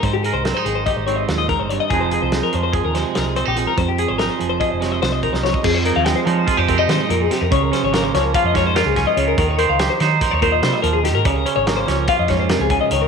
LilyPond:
<<
  \new Staff \with { instrumentName = "Clean electric guitar" } { \time 9/8 \key f \minor \tempo 4. = 96 c''16 g'16 aes'16 c''16 bes'16 c''16 aes'16 c''16 ees''16 c''16 des''16 ees''16 c''16 ees''16 bes'16 c''16 des''16 ees''16 | aes'16 c''16 aes'16 c''16 aes'16 bes'16 c''16 c''16 aes'16 bes'16 c''16 aes'16 bes'16 aes'16 c''16 g'16 aes'16 bes'16 | c''16 g'16 aes'16 c''16 bes'16 c''16 aes'16 c''16 ees''16 c''16 des''16 ees''16 c''16 ees''16 bes'16 c''16 des''16 ees''16 | aes'16 c''16 bes'16 f''16 g''16 c''16 des''16 c''16 aes'16 c''16 bes'16 ees''16 c''16 ees''16 bes'16 aes'16 g'16 bes'16 |
des''16 bes'16 c''16 des''16 bes'16 c''16 des''16 bes'16 f''16 ees''16 des''16 c''16 bes'16 aes'16 aes''16 ees''16 des''16 bes'16 | bes'16 des''16 bes'16 f''16 g''16 c''16 des''16 c''16 bes'16 des''16 bes'16 ees''16 c''16 ees''16 bes'16 aes'16 g'16 bes'16 | des''16 bes'16 c''16 des''16 bes'16 c''16 des''16 bes'16 f''16 ees''16 des''16 c''16 bes'16 aes'16 aes''16 ees''16 des''16 bes'16 | }
  \new Staff \with { instrumentName = "Clean electric guitar" } { \clef bass \time 9/8 \key f \minor << { r8 bes'8 c'16 ees'8. g'8 c'2 | <f aes ees' aes'>8 aes'8 ees'4 aes'8 aes4 c'16 ees'8. | r8 aes'8 ees'4 aes'8 aes4 ees'4 | r8 ees'8 aes8 ees'8 f'16 g'16 c'16 ees'4.~ ees'16 |
r8 des'8 bes8 des'8 f'8 des'8 f'8 des'4 | r8 c''8 g'8 c''8 c''8 c''2 | r8 des'8 bes8 des'8 f'8 des'2 | } \\ { <aes, ees>4. ees4 aes,8 bes,8 aes,8 g,8 | f,4. f4 c4. f,8 | f,4. f4 c4. f,8 | f,4. f4 c8 aes,8 bes,8 c8 |
des4. f4 aes,4. des8 | ees4. ees'4 bes,8 g8 f8 ees8 | des4. f4 aes,8 c8 des8 ees8 | } >> }
  \new Staff \with { instrumentName = "Fingered electric bass" } { \clef bass \time 9/8 \key f \minor aes,8. c,8 r16 aes,,8 r16 aes,,8. ees,8. g,,8 r16 | f,,8. c,8 r16 f,8. ees,8 r16 c,8. bes,,8 r16 | f,8. aes,,8 r16 f,,8 r16 f,,8. c,8. c,8 r16 | f,8. ees,8 r16 f8 r16 f,8. ees16 r16 f,8 r16 f,16 |
des,8 r16 aes,,8. des,8 r16 f,4 des,8 r16 des,8 | ees,8. des,8 r16 ees8 r16 ees,8. c16 r16 ees,8. aes,16 | des,8 r16 aes,,8. des,8 r16 f,4 des,8 r16 des,8 | }
  \new DrumStaff \with { instrumentName = "Drums" } \drummode { \time 9/8 <hh bd>8 hh8 <hh sn>8 hh8 <hh bd>8 hh8 <hh sn>8 <hh bd>8 hh8 | <hh bd>8 hh8 <hh sn>8 hh8 <hh bd>8 <hh sn>8 <hh sn>8 hh8 hh8 | <hh bd>8 hh8 <hh sn>8 hh8 <hh bd>8 <hh sn>8 <hh sn>8 <hh bd>16 sn16 sn16 bd16 | <cymc bd>8 hh8 <hh sn>8 hh8 <hh bd>8 <hh bd>8 <hh sn>8 hh8 <hh sn>8 |
<hh bd>8 <hh sn>8 <hh sn>8 <hh sn>8 <hh bd>8 <hh bd sn>8 <hh sn>8 <hh bd sn>8 hh8 | <hh bd>8 hh8 <hh sn>8 <hh sn>8 <hh bd>8 <hh bd>8 <hh sn>8 hh8 <hh sn>8 | <hh bd>8 hh8 <hh sn>8 <hh sn>8 <hh bd>8 <hh bd sn>8 <hh sn>8 <hh bd>8 hh8 | }
>>